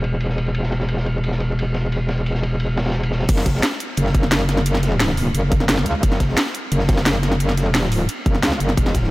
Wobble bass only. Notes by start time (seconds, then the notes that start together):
Already playing: E1
3.29 F#1
3.97 F#1
5.35 F#1
5.86 C#2
6.03 F#1
6.72 F#1
7.70 E1
7.92 D1
8.26 F#1
8.43 C#2
8.60 F#1
8.77 E1